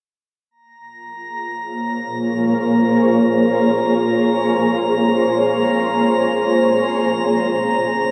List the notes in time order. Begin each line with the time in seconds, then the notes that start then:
0.50 A#3 A#5
0.74 F4
0.97 G#4
1.18 C5 C#5
6.79 C#4